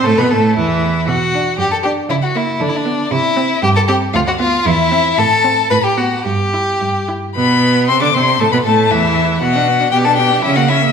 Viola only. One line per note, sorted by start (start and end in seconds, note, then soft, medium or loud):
0.06 0.21 A3 medium
0.20 0.34 B3 medium
0.33 0.58 A3 medium
0.59 1.08 E3 medium
1.35 1.53 D4 medium
1.85 2.03 D4 medium
2.36 2.54 A#3 medium
2.86 3.05 B3 medium
3.37 3.56 C4 medium
3.89 4.08 C4 medium
4.40 4.59 B3 medium
4.92 5.11 C4 medium
5.44 5.64 C4 medium
5.98 6.18 B3 medium
6.54 6.74 E4 medium
7.09 7.29 E4 medium
7.36 7.90 B3 medium
7.89 8.01 C4 medium
8.02 8.07 D4 medium
8.15 8.23 C4 medium
8.41 8.46 A3 medium
8.53 8.58 B3 medium
8.66 8.93 A3 medium
8.91 9.42 E3 medium
9.43 9.57 B3 medium
9.55 9.70 D4 medium
9.68 9.82 B3 medium
9.80 9.92 D4 medium
9.93 10.07 B3 medium
10.06 10.20 D4 medium
10.19 10.33 B3 medium
10.31 10.43 D4 medium
10.44 10.58 C#4 medium
10.56 10.71 A#3 medium
10.69 10.83 C#4 medium
10.82 10.92 A#3 medium